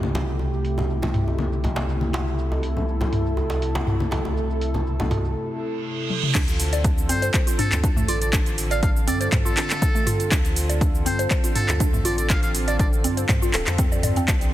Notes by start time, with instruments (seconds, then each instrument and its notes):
Already playing: sub bass C2, analog synth pad C3 A3 E4 G4
0.03 high conga, shaker
0.15 open hi-hat, djembe slap, high conga, low conga, shaker
0.29 shaker
0.39 djembe tone, shaker
0.53 shaker
0.65 open hi-hat, shaker
0.78 djembe tone, high conga, low conga, shaker
0.90 shaker
1.02 djembe slap, low conga
1.14 mid tom, open hi-hat, shaker
1.28 djembe tone, shaker
1.38 high conga, shaker
1.53 shaker
1.64 open hi-hat, djembe tone, low conga, shaker
1.76 djembe slap, high conga, shaker
1.89 shaker
2.01 high conga, shaker
2.13 open hi-hat, djembe slap, djembe tone, high conga, shaker
2.27 shaker
2.38 analog synth pad A4, shaker
2.52 djembe tone, shaker
2.63 open hi-hat, shaker
2.77 low conga, shaker
2.88 shaker
3.01 djembe slap, djembe tone, low conga, shaker
3.13 mid tom, open hi-hat, shaker
3.26 shaker
3.37 djembe tone, shaker
3.50 open hi-hat, djembe slap, shaker
3.62 open hi-hat, shaker
3.75 djembe slap, high conga, shaker
3.87 mid tom, djembe tone, shaker
4.00 high conga, shaker
4.11 open hi-hat, djembe slap, high conga, low conga, shaker
4.25 djembe tone, shaker
4.37 shaker
4.50 shaker
4.61 open hi-hat, shaker
4.74 high conga, djembe tone, low conga, shaker
4.87 shaker
5.00 djembe slap, low conga, shaker
5.11 mid tom, open hi-hat, djembe tone, shaker
5.25 shaker
5.36 reverse cymbal
6.10 high tom
6.23 mid tom
6.35 sub bass D2, analog synth pad D3 C4 F4 A4, synth pluck D4, kick, clap, closed hi-hat, crash, shaker
6.48 closed hi-hat, shaker
6.60 open hi-hat, shaker
6.73 synth pluck D5, closed hi-hat, shaker
6.84 synth pluck D4, kick, closed hi-hat, shaker
6.98 shaker
7.09 sub bass G2, synth pluck C4, muted trumpet C5, open hi-hat, shaker
7.22 synth pluck C5, closed hi-hat, shaker
7.34 kick, clap, closed hi-hat, shaker
7.47 synth pluck F4, open hi-hat, shaker
7.59 synth pluck D4, muted trumpet A4, mid tom, open hi-hat, shaker
7.72 sub bass D2, clap, closed hi-hat, shaker
7.84 synth pluck D4, kick, closed hi-hat, shaker
7.97 synth pluck A3, mid tom, shaker
8.08 sub bass A1, synth pluck F4, muted trumpet D5, open hi-hat, shaker
8.21 muted trumpet D5, closed hi-hat, shaker
8.33 synth pluck D4, kick, clap, closed hi-hat, shaker
8.46 closed hi-hat, shaker
8.58 open hi-hat, shaker
8.71 synth pluck D5, muted trumpet F5, closed hi-hat, shaker
8.83 synth pluck D4, muted trumpet F5, kick, closed hi-hat, shaker
8.96 shaker
9.07 sub bass G2, synth pluck C4, muted trumpet D5, open hi-hat, shaker
9.21 synth pluck C5, muted trumpet D5, closed hi-hat, shaker
9.32 kick, clap, closed hi-hat, mid tom, shaker
9.45 synth pluck F4, muted trumpet A4, shaker
9.57 synth pluck D4, clap, open hi-hat, shaker
9.70 clap, closed hi-hat, shaker
9.82 synth pluck D4, kick, closed hi-hat, shaker
9.95 synth pluck A3, shaker
10.07 synth pluck F4, mid tom, open hi-hat, shaker
10.20 closed hi-hat, shaker
10.31 sub bass D2, synth pluck D4, kick, clap, closed hi-hat, shaker
10.45 closed hi-hat, shaker
10.56 open hi-hat, shaker
10.69 synth pluck D5, closed hi-hat, shaker
10.81 synth pluck D4, kick, closed hi-hat, shaker
10.95 shaker
11.06 sub bass G2, synth pluck C4, muted trumpet C5, open hi-hat, shaker
11.19 synth pluck C5, closed hi-hat, shaker
11.31 kick, clap, closed hi-hat, shaker
11.44 synth pluck F4, open hi-hat, shaker
11.55 synth pluck D4, muted trumpet A4, mid tom, open hi-hat, shaker
11.69 sub bass D2, clap, closed hi-hat, shaker
11.80 synth pluck D4, kick, closed hi-hat, shaker
11.93 synth pluck A3, mid tom, shaker
12.05 sub bass A1, synth pluck F4, muted trumpet D5, open hi-hat, shaker
12.18 muted trumpet D5, closed hi-hat, shaker
12.30 synth pluck D4, muted trumpet F5, kick, clap, closed hi-hat, shaker
12.43 muted trumpet F5, closed hi-hat, shaker
12.55 open hi-hat, shaker
12.67 muted trumpet D5, synth pluck D5, closed hi-hat, shaker
12.79 synth pluck D4, muted trumpet D5, kick, closed hi-hat, shaker
12.93 shaker
13.04 sub bass G2, synth pluck C4, open hi-hat, shaker
13.17 synth pluck C5, closed hi-hat, shaker
13.29 synth pluck C5, kick, clap, closed hi-hat, mid tom, shaker
13.42 synth pluck F4, shaker
13.54 sub bass D1, synth pluck A4, clap, open hi-hat, shaker
13.67 sub bass F2, clap, closed hi-hat, shaker
13.78 synth pluck C4, kick, closed hi-hat, shaker
13.92 synth pluck D5, shaker
14.03 synth pluck D5, mid tom, open hi-hat, shaker
14.16 synth pluck C4, closed hi-hat, shaker
14.28 sub bass C2, analog synth pad E3 G4 A4, synth pluck D4, kick, clap, closed hi-hat, shaker
14.41 closed hi-hat, shaker